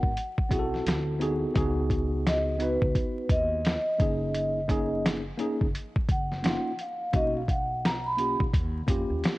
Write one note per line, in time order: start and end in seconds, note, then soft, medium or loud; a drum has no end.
0.00 0.14 G#1 medium
0.00 0.10 D#4 medium
0.00 0.11 F#4 medium
0.00 0.11 A#4 medium
0.00 0.83 F#5 medium
0.00 kick loud
0.17 closed hi-hat medium
0.38 kick medium
0.49 0.79 B1 medium
0.49 1.49 C4 medium
0.49 1.50 E4 medium
0.49 1.20 F#4 medium
0.49 0.60 G#4 medium
0.49 kick medium
0.49 closed hi-hat medium
0.59 1.54 A4 medium
0.74 snare soft
0.86 1.42 D2 medium
0.86 snare loud
0.86 closed hi-hat medium
1.19 1.53 B3 medium
1.19 1.54 D#4 medium
1.19 1.55 F#4 medium
1.19 1.56 G#4 medium
1.19 closed hi-hat medium
1.54 2.78 C#2 loud
1.54 2.54 B3 medium
1.54 2.55 D#4 medium
1.54 2.55 F#4 medium
1.54 2.56 G#4 medium
1.54 kick loud
1.54 closed hi-hat medium
1.90 kick medium
1.90 closed hi-hat medium
2.27 2.63 D#5 loud
2.27 snare loud
2.27 closed hi-hat loud
2.59 3.59 B3 medium
2.59 3.59 D#4 medium
2.59 3.60 F#4 medium
2.59 3.60 B4 medium
2.59 3.33 B4 medium
2.59 closed hi-hat medium
2.82 2.93 C#2 medium
2.82 kick medium
2.95 kick loud
2.95 closed hi-hat medium
3.29 3.75 D#2 loud
3.29 5.01 D#5 loud
3.29 kick loud
3.29 closed hi-hat medium
3.65 snare loud
3.65 closed hi-hat medium
3.98 5.29 F#1 medium
3.98 4.58 A#3 medium
3.98 4.59 C#4 medium
3.98 4.59 D#4 medium
3.98 4.60 G#4 medium
3.98 kick loud
3.98 closed hi-hat medium
4.34 closed hi-hat medium
4.68 5.21 A#3 medium
4.68 5.21 C#4 medium
4.68 5.22 D#4 medium
4.68 5.22 G#4 loud
4.68 kick medium
4.68 closed hi-hat medium
5.06 snare loud
5.06 closed hi-hat loud
5.38 5.65 A#3 medium
5.38 5.66 C#4 medium
5.38 5.66 D#4 medium
5.38 5.67 G#4 medium
5.38 closed hi-hat medium
5.61 5.72 F#1 medium
5.61 kick medium
5.75 closed hi-hat medium
5.96 kick medium
6.09 6.54 F#1 medium
6.09 6.82 F#5 medium
6.09 kick loud
6.09 closed hi-hat medium
6.32 snare soft
6.43 6.70 A#3 medium
6.43 6.71 C#4 medium
6.43 6.71 D#4 medium
6.43 6.72 F4 medium
6.43 snare loud
6.43 closed hi-hat medium
6.79 7.16 F5 medium
6.79 closed hi-hat medium
7.13 8.36 B1 loud
7.13 7.40 A#3 medium
7.13 7.40 C#4 medium
7.13 7.41 D#4 medium
7.13 7.42 F#4 medium
7.13 7.25 D#5 loud
7.13 kick loud
7.13 closed hi-hat medium
7.37 7.50 F5 medium
7.48 7.86 F#5 medium
7.48 kick medium
7.48 closed hi-hat medium
7.85 8.06 A#5 loud
7.85 snare loud
7.85 closed hi-hat loud
8.06 8.38 B5 medium
8.17 8.45 A#3 medium
8.17 8.45 C#4 medium
8.17 8.46 F4 medium
8.17 8.46 G4 medium
8.17 closed hi-hat medium
8.40 8.51 B1 medium
8.40 kick medium
8.54 8.82 D#2 loud
8.54 kick loud
8.54 closed hi-hat medium
8.87 9.05 F2 medium
8.87 9.31 A#3 medium
8.87 9.32 C#4 medium
8.87 9.32 F4 medium
8.87 9.33 G4 medium
8.87 kick medium
8.87 closed hi-hat medium
9.10 9.21 D#2 medium
9.24 snare loud
9.24 closed hi-hat medium